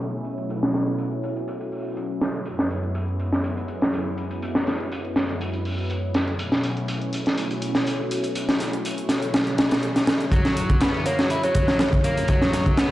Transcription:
0.00 2.42 B2 medium
0.00 6.35 F#3 medium
0.00 2.42 A3 medium
0.00 2.42 C#4 medium
0.00 6.35 E4 medium
0.00 closed hi-hat soft
0.00 closed hi-hat medium
0.24 closed hi-hat medium
0.37 closed hi-hat soft
0.49 closed hi-hat soft
0.49 closed hi-hat medium
0.62 snare soft
0.62 closed hi-hat soft
0.74 snare soft
0.74 closed hi-hat medium
0.87 closed hi-hat soft
0.98 closed hi-hat medium
0.98 closed hi-hat soft
1.12 closed hi-hat soft
1.23 closed hi-hat medium
1.36 closed hi-hat soft
1.48 closed hi-hat medium
1.48 closed hi-hat soft
1.61 closed hi-hat soft
1.72 closed hi-hat medium
1.72 open hi-hat medium
1.85 closed hi-hat soft
1.97 closed hi-hat soft
1.97 closed hi-hat medium
2.21 snare soft
2.21 closed hi-hat medium
2.34 closed hi-hat soft
2.45 6.36 F#2 medium
2.45 6.35 G#3 medium
2.45 6.35 B3 medium
2.45 closed hi-hat medium
2.45 closed hi-hat soft
2.59 snare soft
2.59 closed hi-hat soft
2.70 closed hi-hat medium
2.83 closed hi-hat soft
2.95 closed hi-hat medium
2.95 closed hi-hat soft
3.08 closed hi-hat soft
3.20 closed hi-hat medium
3.33 snare soft
3.33 closed hi-hat soft
3.44 closed hi-hat soft
3.44 closed hi-hat medium
3.57 closed hi-hat soft
3.68 closed hi-hat medium
3.82 snare medium
3.82 closed hi-hat soft
3.93 closed hi-hat soft
3.93 closed hi-hat medium
4.18 closed hi-hat medium
4.31 closed hi-hat soft
4.42 closed hi-hat soft
4.42 closed hi-hat medium
4.55 snare soft
4.55 closed hi-hat soft
4.67 snare soft
4.67 closed hi-hat medium
4.80 closed hi-hat soft
4.92 closed hi-hat soft
4.92 closed hi-hat medium
5.05 closed hi-hat soft
5.16 snare soft
5.16 closed hi-hat medium
5.29 closed hi-hat soft
5.41 closed hi-hat soft
5.41 closed hi-hat medium
5.53 closed hi-hat soft
5.65 closed hi-hat medium
5.65 open hi-hat medium
5.78 closed hi-hat soft
5.90 closed hi-hat soft
5.90 closed hi-hat medium
6.14 snare soft
6.14 closed hi-hat medium
6.28 closed hi-hat soft
6.39 10.29 B2 medium
6.39 10.29 F#3 medium
6.39 10.29 A3 medium
6.39 10.29 C#4 medium
6.39 10.29 E4 medium
6.39 closed hi-hat soft
6.39 closed hi-hat medium
6.52 snare soft
6.52 closed hi-hat soft
6.64 closed hi-hat medium
6.77 closed hi-hat soft
6.88 closed hi-hat medium
6.88 closed hi-hat soft
7.01 closed hi-hat soft
7.13 closed hi-hat medium
7.26 snare soft
7.26 closed hi-hat soft
7.38 closed hi-hat soft
7.38 closed hi-hat medium
7.51 closed hi-hat soft
7.62 closed hi-hat medium
7.75 snare medium
7.75 closed hi-hat soft
7.87 closed hi-hat soft
7.87 closed hi-hat medium
8.11 closed hi-hat medium
8.24 closed hi-hat soft
8.35 closed hi-hat medium
8.35 closed hi-hat soft
8.49 snare soft
8.49 closed hi-hat soft
8.60 snare soft
8.60 closed hi-hat medium
8.73 closed hi-hat soft
8.85 closed hi-hat soft
8.85 closed hi-hat medium
8.98 closed hi-hat soft
9.09 snare soft
9.09 closed hi-hat medium
9.22 closed hi-hat soft
9.34 snare medium
9.34 closed hi-hat medium
9.34 closed hi-hat soft
9.47 closed hi-hat soft
9.58 snare loud
9.58 closed hi-hat medium
9.71 snare medium
9.71 closed hi-hat medium
9.71 closed hi-hat soft
9.83 closed hi-hat soft
9.96 snare soft
9.96 closed hi-hat soft
9.96 closed hi-hat medium
10.07 snare medium
10.07 closed hi-hat medium
10.21 closed hi-hat soft
10.32 12.91 F#2 medium
10.32 10.80 F#3 medium
10.32 12.91 F#3 medium
10.32 12.91 G#3 medium
10.32 12.91 E4 medium
10.32 kick medium
10.32 closed hi-hat medium
10.32 closed hi-hat soft
10.45 snare soft
10.45 closed hi-hat soft
10.57 closed hi-hat medium
10.70 kick medium
10.70 closed hi-hat soft
10.81 11.05 B3 medium
10.81 snare loud
10.81 clap medium
10.81 closed hi-hat soft
10.81 closed hi-hat medium
11.06 11.18 A#3 loud
11.06 11.26 C#5 medium
11.06 closed hi-hat medium
11.19 11.29 F#3 medium
11.19 snare soft
11.19 closed hi-hat soft
11.30 11.41 E4 loud
11.30 closed hi-hat medium
11.30 closed hi-hat soft
11.43 11.54 F#3 loud
11.43 11.51 C#5 medium
11.43 closed hi-hat soft
11.55 11.67 F#3 medium
11.55 11.64 C#5 medium
11.55 kick medium
11.55 closed hi-hat medium
11.68 11.78 F#3 medium
11.68 snare medium
11.68 closed hi-hat soft
11.79 snare loud
11.79 clap loud
11.79 closed hi-hat medium
11.79 closed hi-hat soft
11.93 kick medium
11.93 closed hi-hat soft
12.04 12.28 A#3 medium
12.04 closed hi-hat medium
12.17 closed hi-hat soft
12.28 12.77 F#3 loud
12.28 kick loud
12.28 closed hi-hat medium
12.28 closed hi-hat soft
12.42 snare medium
12.42 closed hi-hat soft
12.53 snare soft
12.53 closed hi-hat medium
12.66 kick loud
12.66 closed hi-hat soft
12.77 12.91 B3 medium
12.77 snare loud
12.77 clap loud
12.77 closed hi-hat medium
12.77 closed hi-hat soft

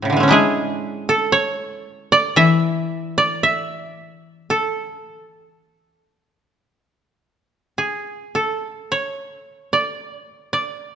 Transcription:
0.00 1.08 A2 medium
0.00 0.23 A2 soft
0.00 0.32 E3 soft
0.00 0.57 A3 soft
0.00 0.84 C#4 soft
0.00 1.09 E4 soft
0.05 0.34 C#3 soft
0.10 0.29 D3 soft
0.10 0.34 E3 soft
0.17 0.34 G#3 soft
0.17 0.38 A3 soft
0.23 2.18 C#4 soft
0.28 3.43 G#3 medium
0.28 1.38 D4 medium
0.28 2.55 E4 medium
0.32 1.15 G#4 medium
1.09 2.99 A4 medium
1.32 2.18 C#5 medium
2.12 3.17 D5 medium
2.36 5.56 E3 medium
2.36 3.43 E5 medium
3.18 4.78 D5 medium
3.43 4.93 E5 medium
4.50 7.74 A4 medium
7.78 8.41 G#4 medium
8.35 10.25 A4 medium
8.92 9.79 C#5 medium
9.73 10.18 D5 medium
10.18 10.53 C#5 medium
10.53 10.95 D5 medium

